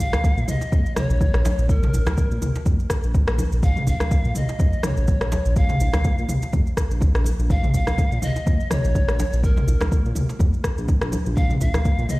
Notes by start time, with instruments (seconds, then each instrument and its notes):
0.00 pan flute F5, kick, muted conga, djembe tone, shaker
0.13 cross-stick, djembe slap, high conga, low conga, djembe bass, shaker
0.24 kick, muted conga, djembe tone, high conga, shaker
0.37 analog synth bass A#2, shaker
0.48 pan flute D#5, mid tom, muted conga, djembe tone, shaker
0.61 djembe slap, shaker
0.72 analog synth bass F2, kick, high conga, djembe tone, shaker
0.86 muted conga, shaker
0.96 pan flute C#5, cross-stick, mid tom, djembe tone, low conga, shaker
1.09 analog synth bass A#1, muted conga, shaker
1.21 kick, djembe tone, low conga, shaker
1.34 analog synth bass A#1, cross-stick, muted conga, shaker
1.45 djembe slap, djembe tone, high conga, low conga, shaker
1.58 analog synth bass A#1, shaker
1.69 pan flute A#4, kick, muted conga, djembe tone, shaker
1.83 mid tom, djembe slap, shaker
1.93 analog synth bass A#1, muted conga, djembe tone, shaker
2.06 cross-stick, djembe slap, high conga, low conga, djembe bass, shaker
2.17 kick, muted conga, djembe tone, high conga, shaker
2.31 analog synth bass A#2, shaker
2.41 mid tom, muted conga, high conga, djembe tone, shaker
2.55 djembe slap, shaker
2.65 analog synth bass F2, kick, high conga, djembe tone, shaker
2.79 muted conga, shaker
2.90 kick, cross-stick, djembe tone, shaker
3.03 analog synth bass A#1, muted conga, shaker
3.14 kick, djembe tone, shaker
3.27 analog synth bass A#1, cross-stick, muted conga, high conga, shaker
3.38 djembe tone, low conga, shaker
3.52 analog synth bass A#1, shaker
3.63 pan flute F5, kick, muted conga, djembe tone, shaker
3.76 mid tom, shaker
3.87 analog synth bass A#1, pan flute F5, kick, muted conga, djembe tone, shaker
4.00 cross-stick, djembe slap, high conga, djembe bass, low conga, shaker
4.11 kick, muted conga, djembe tone, high conga, shaker
4.25 analog synth bass A#2, shaker
4.35 pan flute D#5, mid tom, muted conga, djembe tone, shaker
4.49 djembe slap, shaker
4.59 analog synth bass F2, kick, high conga, djembe tone, shaker
4.73 muted conga, shaker
4.83 pan flute C#5, cross-stick, mid tom, djembe tone, low conga, shaker
4.97 analog synth bass A#1, muted conga, shaker
5.08 kick, djembe tone, low conga, shaker
5.21 analog synth bass A#1, cross-stick, muted conga, shaker
5.32 djembe slap, high conga, djembe tone, low conga, shaker
5.45 analog synth bass A#1, shaker
5.56 pan flute F5, kick, muted conga, djembe tone, shaker
5.69 mid tom, djembe slap, shaker
5.80 analog synth bass A#1, muted conga, djembe tone, shaker
5.93 cross-stick, djembe slap, high conga, djembe bass, low conga, shaker
6.04 kick, muted conga, djembe tone, high conga, shaker
6.18 analog synth bass A#2, shaker
6.28 mid tom, muted conga, high conga, djembe tone, shaker
6.42 djembe slap, shaker
6.53 analog synth bass F2, kick, djembe tone, high conga, shaker
6.66 muted conga, shaker
6.77 kick, cross-stick, djembe tone, shaker
6.91 analog synth bass A#1, muted conga, shaker
7.01 kick, djembe tone, shaker
7.14 analog synth bass A#1, cross-stick, muted conga, high conga, shaker
7.24 djembe tone, low conga, shaker
7.39 analog synth bass A#1, shaker
7.50 pan flute F5, kick, muted conga, djembe tone, shaker
7.63 mid tom, shaker
7.74 analog synth bass A#1, pan flute F5, kick, muted conga, djembe tone, shaker
7.87 cross-stick, djembe slap, high conga, djembe bass, low conga, shaker
7.98 kick, muted conga, djembe tone, high conga, shaker
8.12 analog synth bass A#2, shaker
8.21 pan flute D#5, mid tom, muted conga, djembe tone, shaker
8.36 djembe slap, shaker
8.46 analog synth bass F2, kick, djembe tone, high conga, shaker
8.60 muted conga, shaker
8.70 pan flute C#5, cross-stick, mid tom, djembe tone, low conga, shaker
8.85 analog synth bass A#1, muted conga, shaker
8.95 kick, djembe tone, low conga, shaker
9.08 analog synth bass A#1, cross-stick, muted conga, shaker
9.19 djembe slap, djembe tone, high conga, low conga, shaker
9.33 analog synth bass A#1, shaker
9.43 pan flute A#4, kick, muted conga, djembe tone, shaker
9.57 mid tom, djembe slap, shaker
9.67 analog synth bass A#1, muted conga, djembe tone, shaker
9.81 cross-stick, djembe slap, high conga, low conga, djembe bass, shaker
9.91 kick, muted conga, high conga, djembe tone, shaker
10.06 analog synth bass A#2, shaker
10.15 mid tom, muted conga, djembe tone, high conga, shaker
10.29 djembe slap, shaker
10.39 analog synth bass F2, kick, djembe tone, high conga, shaker
10.53 muted conga, shaker
10.64 kick, cross-stick, djembe tone, shaker
10.78 analog synth bass A#1, muted conga, shaker
10.88 kick, djembe tone, shaker
11.02 analog synth bass A#1, cross-stick, muted conga, high conga, shaker
11.12 djembe tone, low conga, shaker
11.26 analog synth bass A#1, shaker
11.36 pan flute F5, kick, muted conga, djembe tone, shaker
11.50 mid tom, shaker
11.61 analog synth bass A#1, pan flute F5, kick, muted conga, djembe tone, shaker
11.74 cross-stick, djembe slap, high conga, djembe bass, low conga, shaker
11.85 kick, muted conga, high conga, djembe tone, shaker
11.98 analog synth bass A#2, shaker
12.09 pan flute D#5, mid tom, muted conga, djembe tone, shaker